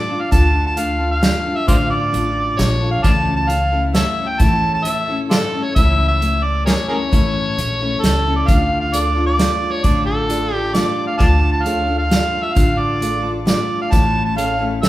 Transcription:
Already playing: D5
0.09 D4 F4 A4
0.21 F5
0.31 D2 D3 A3 D4 F4 A4 A5, kick, closed hi-hat
0.67 A5
0.76 A3 D4 F4 A4 F5, closed hi-hat
0.99 D4 F4 A4
1.11 F5
1.21 A3 D4 F4 A4, snare, closed hi-hat
1.45 D4 F4 A4
1.56 E5
1.67 A1 D3 A3 D4 F4 A4 C5 D5 F5, kick, closed hi-hat
1.90 D5
2.11 A1 A3 D4 F4 A4, closed hi-hat
2.57 A#1 A3 D4 F4 A4 C#5, snare, closed hi-hat
2.80 D4 F4 A4
2.91 F5
3.03 C#2 C#3 E3 A3 C#4 E4 A4 D5 F5 A5, kick, closed hi-hat
3.36 A5
3.49 A3 C#4 E4 A4 F5, closed hi-hat
3.72 A3 C#4 E4 A4
3.93 A3 C#4 E4 A4 C#5 E5, snare, closed hi-hat
4.28 G5
4.39 A2 C#3 E3 A3 C#4 E4 A4 A5, kick, closed hi-hat
4.74 A5
4.84 A3 C#4 E4 A4 E5, closed hi-hat
5.08 A3 C#4 E4 A4
5.30 A3 C#4 D4 E4 F4 A4, snare, closed hi-hat
5.53 A3 C#4 E4 A4
5.63 C#5
5.75 C#2 C#3 E3 A3 C#4 E4 A4 E5, kick, closed hi-hat
6.08 E5
6.20 A3 C#4 E4 A4, closed hi-hat
6.43 D5
6.66 A3 C#4 E4 G#4 A4 A#4 C#5, snare, closed hi-hat
6.88 A3 C#4 E4 G#4 A4 A#4 C#5
7.11 A2 C#3 E3 A3 C#4 E4 A4, kick, closed hi-hat
7.57 A#1 A3 C#4 E4 A4, closed hi-hat
7.81 A3 C#4 E4 A4
8.02 C#2 A3 C#4 E4 A4, snare, closed hi-hat
8.26 A3 C#4 E4 A4
8.36 D5
8.47 D2 D3 A3 D4 F4 A4 F5, kick, closed hi-hat
8.81 F5
8.93 A3 D4 F4 A4 D5, closed hi-hat
9.15 D4 F4 A4
9.26 D5
9.38 A3 D4 F4 A4 D5, snare, closed hi-hat
9.72 C#5
9.83 A1 D3 A3 D4 F4 A4 D5, kick, closed hi-hat
10.06 A4
10.28 A3 D4 F4 A4 D5, closed hi-hat
10.50 D4 F4 A4
10.55 G4
10.73 A3 D4 F4 A4 D5, snare, closed hi-hat
11.07 F5
11.18 D2 D3 A3 D4 F4 A4 D5 F5 A5, kick, closed hi-hat
11.52 A5
11.63 A3 D4 F4 A4 C#5 F5, closed hi-hat
11.86 D4 F4 A4
11.98 F5
12.10 A3 D4 F4 A4 D5, snare, closed hi-hat
12.43 E5
12.54 A1 D3 A3 D4 F4 A4 F5, kick, closed hi-hat
12.78 D5
13.00 A3 D4 F4 A4 D5, closed hi-hat
13.22 D4 F4 A4
13.46 A3 D4 F4 A4 D5, snare, closed hi-hat
13.82 F5
13.91 A1 A2 E3 A3 C#4 E4 A4 A5, kick, closed hi-hat
14.25 A5
14.35 A3 C#4 E4 A4 C#5 F5, closed hi-hat
14.59 A3 C#4 E4 A4
14.82 A3 C#4 E4 A4 C#5 E5, snare, closed hi-hat

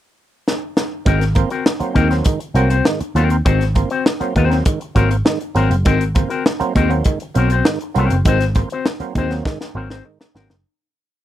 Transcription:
0.48 snare
0.77 snare
1.05 G#1 G#2 D#3 C4 F#4 A#4, kick, closed hi-hat
1.21 snare, closed hi-hat
1.35 A#3 C4, muted clean electric guitar stroke, kick, closed hi-hat
1.50 C4 F#4 A#4, closed hi-hat
1.65 muted clean electric guitar stroke, snare
1.80 F#3 A#3 C4, muted clean electric guitar stroke, muted picked electric bass stroke, closed hi-hat
1.94 D#2 G#2 D#3 C4 F#4 A#4, kick, closed hi-hat
2.09 F#3 A#3 C4, muted clean electric guitar stroke, snare, closed hi-hat
2.24 G#2 D#3, muted clean electric guitar stroke, kick, closed hi-hat
2.39 muted clean electric guitar stroke, closed hi-hat
2.54 C2 F#3 A#3 C4 F#4 A#4, closed hi-hat
2.70 A#3 C4 F#4 C5, closed hi-hat
2.85 G#2 D#3, snare
3.00 muted clean electric guitar stroke, muted picked electric bass stroke, closed hi-hat
3.15 D#2 F#3 A#3 C4 F#4 A#4, closed hi-hat
3.30 A#3 C4, muted clean electric guitar stroke, closed hi-hat
3.45 G#1 G#2 D#3 C4 F#4 C5, kick, closed hi-hat
3.61 snare, closed hi-hat
3.75 A#3 C4, muted clean electric guitar stroke, kick, closed hi-hat
3.90 C4 F#4 C5, closed hi-hat
4.06 snare
4.20 F#3 A#3 C4, muted clean electric guitar stroke, muted picked electric bass stroke, closed hi-hat
4.36 D#2 G#2 D#3 C4 F#4 C5, kick, closed hi-hat
4.50 F#3 A#3 C4, muted clean electric guitar stroke, snare, closed hi-hat
4.65 G#2 D#3, muted clean electric guitar stroke, kick, closed hi-hat
4.80 muted clean electric guitar stroke, closed hi-hat
4.95 G#1 F#3 A#3 C4 F#4 A#4, kick, closed hi-hat
5.11 A#3 C4, muted clean electric guitar stroke, closed hi-hat
5.25 G#2 D#3, muted clean electric guitar stroke, snare
5.41 muted clean electric guitar stroke, closed hi-hat
5.55 G#1 F#3 A#3 C4 F#4 A#4, closed hi-hat
5.70 F#1 A#3 C4, muted clean electric guitar stroke, closed hi-hat
5.85 G#1 G#2 D#3 C4 F#4 A#4, kick, closed hi-hat
6.01 closed hi-hat
6.15 A#3 C4, muted clean electric guitar stroke, kick, closed hi-hat
6.30 C4 F#4 A#4, closed hi-hat
6.46 snare
6.60 F#3 A#3 C4, muted clean electric guitar stroke, muted picked electric bass stroke, closed hi-hat
6.75 D#2 G#2 D#3 C4 F#4 A#4, kick, closed hi-hat
6.90 F#3 A#3 C4, muted clean electric guitar stroke, closed hi-hat
7.04 G#2 D#3, muted clean electric guitar stroke, kick, closed hi-hat
7.20 muted clean electric guitar stroke, closed hi-hat
7.35 B1 F#3 A#3 C4 F#4 A#4, closed hi-hat
7.50 A#3 C4 F#4 C5, closed hi-hat
7.65 G#2 D#3, snare
7.81 muted clean electric guitar stroke, closed hi-hat
7.94 C2 F#3 A#3 C4 F#4, closed hi-hat
7.99 A#4
8.10 F#1 A#3 C4, muted clean electric guitar stroke, closed hi-hat
8.25 G#1 G#2 D#3 C4 F#4 C5, kick, closed hi-hat
8.40 snare, closed hi-hat
8.55 A#3 C4, muted clean electric guitar stroke, kick, closed hi-hat
8.70 C4 F#4 C5, closed hi-hat
8.86 snare
9.00 F#3 A#3 C4, muted picked electric bass stroke, muted clean electric guitar stroke, closed hi-hat
9.15 D#2 G#2 D#3 C4 F#4 C5, kick, closed hi-hat
9.30 F#3 A#3 C4, muted clean electric guitar stroke, snare, closed hi-hat
9.45 G#2 D#3, muted clean electric guitar stroke, kick, snare
9.61 muted clean electric guitar stroke, snare
9.75 G#1 F#3 A#3 C4 F#4 A#4
9.90 A#3 C4 F#4 C5, snare
10.05 G#2 D#3, muted clean electric guitar stroke
10.20 muted clean electric guitar stroke, snare
10.35 G#1 F#3 A#3 C4 F#4 A#4, snare
10.49 F#1 A#3 C4, muted clean electric guitar stroke, snare

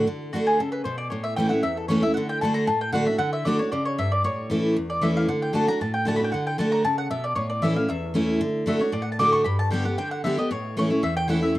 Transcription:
0.07 D3
0.33 D3 A3 D4 F#4
0.47 G#4
0.60 C#3 A4
0.72 B4
0.84 B2 C5
0.98 D5
1.10 A2 C#5
1.24 E5
1.36 E3 A3 C#4 E4 G5
1.49 C#4 E4 F#5
1.63 E2 E5
1.77 A4
1.88 E3 A3 C#4 E4 C#5
2.03 C#4 E4 E5
2.14 D3 F#5
2.29 G5
2.41 D3 A3 D4 F#4 A5
2.54 A#5
2.67 A2 A5
2.81 G5
2.92 D3 A3 D4 F#4 F#5
3.06 D4 F#4 E5
3.18 D3 F#5
3.33 E5
3.45 D3 A3 D4 F#4 D5
3.59 D4 F#4 C#5
3.72 C#3 D5
3.85 C#5
3.98 G2 E5
4.12 D5
4.24 A2 C#5
4.50 E3 A3 C#4 E4
4.76 E2
4.90 D5
5.01 E3 A3 C#4 E4 E5
5.17 F5
5.28 D3 F#5
5.42 G5
5.53 D3 A3 D4 F#4 A5
5.67 D4 F#4 A#5
5.81 A2 A5
5.94 G5
6.05 D3 A3 D4 F#4 A5
6.16 F#4 B5
6.22 D4 G5
6.32 D3 F#5
6.47 G5
6.58 D3 A3 D4 F#4 A5
6.72 A#5
6.85 C#3 A5
6.98 F#5
7.11 B2 E5
7.24 D5
7.35 A2 C#5
7.50 D5
7.62 E3 A3 C#4 E4 E5
7.76 C#4 E4 F5
7.89 E2 E5
8.14 E3 A3 C#4 E4
8.41 D3
8.66 D3 A3 D4 F#4 E5
8.79 D4 F#4 C#5
8.92 A2 D5
9.02 F#5
9.12 A5
9.19 D3 A3 D4 F#4 D6
9.32 C#6
9.44 G2 B5
9.59 A5
9.71 D3 G3 B3 G4 G5
9.85 B3 G4 F#5
9.98 D3 G5
10.11 F#5
10.24 D3 G3 B3 G4 E5
10.38 B3 G4 D#5
10.51 A2 C#5
10.77 E3 A3 C#4 E4 C#5
10.90 C#4 E4
11.03 E2 E5
11.17 G5
11.28 E3 A3 C#4 E4 F#5
11.41 C#4 E4 E5
11.55 A2

